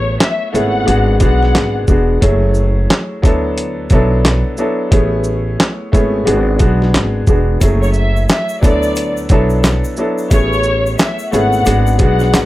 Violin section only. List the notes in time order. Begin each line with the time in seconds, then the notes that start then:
Already playing: C#5
0.20 E5
0.53 F#5
1.21 F#5
7.82 C#5
7.94 E5
8.29 E5
8.62 D5
10.31 C#5
10.99 E5
11.32 F#5
12.00 F#5